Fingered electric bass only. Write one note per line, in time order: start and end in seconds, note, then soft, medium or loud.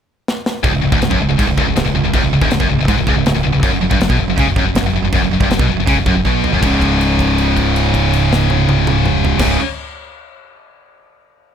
0.64 0.73 C#1 loud
0.75 0.83 C#1 medium
0.84 0.92 C#1 medium
0.92 1.01 D1 medium
1.02 1.11 C#1 medium
1.11 1.20 F#1 medium
1.20 1.28 C#1 medium
1.29 1.38 C#1 medium
1.40 1.46 G#1 medium
1.46 1.56 C#1 medium
1.57 1.65 C#1 loud
1.65 1.75 C#1 medium
1.76 1.85 C#1 medium
1.86 1.93 C#1 medium
1.94 2.03 C#1 medium
2.03 2.13 C#1 medium
2.14 2.23 C#1 loud
2.24 2.32 C#1 medium
2.32 2.41 C#1 medium
2.41 2.50 D1 medium
2.52 2.60 C#1 medium
2.60 2.69 F#1 medium
2.72 2.80 C#1 medium
2.81 2.88 C#1 medium
2.88 2.97 G#1 loud
2.99 3.07 C#1 medium
3.07 3.16 C#1 loud
3.17 3.25 C#1 medium
3.28 3.36 C#1 medium
3.36 3.45 C#1 medium
3.46 3.54 C#1 medium
3.56 3.62 C#1 medium
3.63 3.72 F#1 loud
3.73 3.81 F#1 medium
3.82 3.91 F#1 medium
3.92 3.99 G1 loud
4.00 4.09 F#1 medium
4.10 4.18 B1 medium
4.18 4.27 F#1 medium
4.27 4.37 F#1 medium
4.38 4.45 C#2 medium
4.46 4.55 F#1 medium
4.56 4.63 F#1 loud
4.63 4.73 F#1 medium
4.75 4.82 F#1 medium
4.83 4.92 F#1 medium
4.93 5.01 F#1 medium
5.02 5.11 F#1 medium
5.13 5.22 F#1 loud
5.22 5.31 F#1 medium
5.32 5.40 F#1 medium
5.40 5.49 G1 medium
5.50 5.59 F#1 medium
5.59 5.68 B1 medium
5.69 5.76 F#1 medium
5.76 5.86 F#1 medium
5.88 5.95 C#2 medium
5.95 6.05 F#1 medium
6.05 6.15 F#1 loud
6.15 6.24 F#1 medium
6.25 6.51 B1 medium
6.53 6.62 F#1 medium
6.62 9.32 C#1 loud
9.39 9.55 C#1 medium